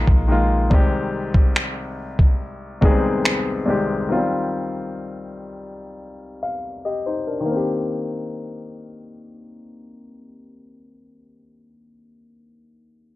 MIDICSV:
0, 0, Header, 1, 4, 480
1, 0, Start_track
1, 0, Key_signature, -3, "minor"
1, 0, Tempo, 845070
1, 403, Time_signature, 4, 2, 24, 8
1, 7474, End_track
2, 0, Start_track
2, 0, Title_t, "Grand piano"
2, 0, Program_c, 0, 0
2, 0, Control_c, 0, 64, 127
2, 0, Note_on_c, 0, 51, 87
2, 0, Note_on_c, 0, 56, 77
2, 0, Note_on_c, 0, 58, 83
2, 0, Note_on_c, 0, 65, 94
2, 88, Note_off_c, 0, 51, 0
2, 92, Note_off_c, 0, 56, 0
2, 96, Note_off_c, 0, 58, 0
2, 100, Note_off_c, 0, 65, 0
2, 157, Note_on_c, 0, 51, 81
2, 165, Note_on_c, 0, 56, 73
2, 173, Note_on_c, 0, 58, 70
2, 181, Note_on_c, 0, 65, 86
2, 364, Note_off_c, 0, 51, 0
2, 368, Note_off_c, 0, 56, 0
2, 372, Note_off_c, 0, 58, 0
2, 376, Note_off_c, 0, 65, 0
2, 399, Note_on_c, 0, 36, 85
2, 405, Note_on_c, 0, 51, 72
2, 410, Note_on_c, 0, 56, 73
2, 411, Control_c, 0, 64, 0
2, 415, Note_on_c, 0, 60, 74
2, 422, Note_on_c, 0, 67, 89
2, 517, Control_c, 0, 64, 127
2, 1217, Note_off_c, 0, 36, 0
2, 1220, Note_off_c, 0, 51, 0
2, 1223, Note_off_c, 0, 56, 0
2, 1226, Note_off_c, 0, 60, 0
2, 1229, Note_off_c, 0, 67, 0
2, 1597, Note_on_c, 0, 36, 87
2, 1603, Note_on_c, 0, 51, 81
2, 1609, Note_on_c, 0, 56, 79
2, 1615, Note_on_c, 0, 59, 64
2, 1621, Note_on_c, 0, 68, 95
2, 1646, Note_off_c, 0, 59, 0
2, 1651, Note_on_c, 0, 60, 80
2, 2008, Note_off_c, 0, 36, 0
2, 2011, Note_off_c, 0, 51, 0
2, 2014, Note_off_c, 0, 56, 0
2, 2020, Note_off_c, 0, 68, 0
2, 2035, Note_off_c, 0, 60, 0
2, 2077, Note_on_c, 0, 36, 79
2, 2083, Note_on_c, 0, 51, 68
2, 2089, Note_on_c, 0, 56, 74
2, 2094, Note_on_c, 0, 60, 72
2, 2100, Note_on_c, 0, 67, 84
2, 2284, Note_off_c, 0, 36, 0
2, 2287, Note_off_c, 0, 51, 0
2, 2290, Note_off_c, 0, 56, 0
2, 2292, Note_off_c, 0, 60, 0
2, 2295, Note_off_c, 0, 67, 0
2, 2318, Note_on_c, 0, 51, 77
2, 2325, Note_on_c, 0, 54, 58
2, 2330, Control_c, 0, 64, 0
2, 2333, Note_on_c, 0, 60, 77
2, 2341, Note_on_c, 0, 65, 93
2, 2361, Note_off_c, 0, 54, 0
2, 2362, Note_on_c, 0, 55, 75
2, 2412, Control_c, 0, 64, 127
2, 3137, Note_off_c, 0, 51, 0
2, 3145, Note_off_c, 0, 60, 0
2, 3148, Note_off_c, 0, 65, 0
2, 3159, Note_off_c, 0, 55, 0
2, 3650, Note_on_c, 0, 77, 59
2, 3875, Note_off_c, 0, 77, 0
2, 3891, Note_on_c, 0, 75, 64
2, 3894, Note_on_c, 0, 67, 55
2, 4001, Note_off_c, 0, 75, 0
2, 4003, Note_off_c, 0, 67, 0
2, 4011, Note_on_c, 0, 72, 64
2, 4015, Note_on_c, 0, 63, 52
2, 4121, Note_off_c, 0, 72, 0
2, 4123, Note_off_c, 0, 63, 0
2, 4130, Note_on_c, 0, 70, 51
2, 4133, Note_on_c, 0, 62, 44
2, 4205, Note_on_c, 0, 51, 72
2, 4235, Note_on_c, 0, 58, 70
2, 4251, Control_c, 0, 64, 0
2, 4266, Note_on_c, 0, 60, 68
2, 4297, Note_on_c, 0, 67, 80
2, 4340, Control_c, 0, 64, 127
2, 4355, Note_off_c, 0, 70, 0
2, 4356, Note_off_c, 0, 62, 0
2, 6634, Note_off_c, 0, 51, 0
2, 6664, Note_off_c, 0, 58, 0
2, 6695, Note_off_c, 0, 60, 0
2, 6726, Note_off_c, 0, 67, 0
2, 7474, End_track
3, 0, Start_track
3, 0, Title_t, "808-style bass"
3, 0, Program_c, 1, 38
3, 43, Note_on_c, 1, 34, 95
3, 389, Note_off_c, 1, 34, 0
3, 7474, End_track
4, 0, Start_track
4, 0, Title_t, "Drums"
4, 43, Note_on_c, 9, 36, 84
4, 100, Note_off_c, 9, 36, 0
4, 403, Note_on_c, 9, 36, 108
4, 460, Note_off_c, 9, 36, 0
4, 763, Note_on_c, 9, 36, 85
4, 820, Note_off_c, 9, 36, 0
4, 887, Note_on_c, 9, 26, 98
4, 943, Note_off_c, 9, 26, 0
4, 1244, Note_on_c, 9, 36, 80
4, 1301, Note_off_c, 9, 36, 0
4, 1604, Note_on_c, 9, 36, 74
4, 1660, Note_off_c, 9, 36, 0
4, 1848, Note_on_c, 9, 26, 100
4, 1905, Note_off_c, 9, 26, 0
4, 7474, End_track
0, 0, End_of_file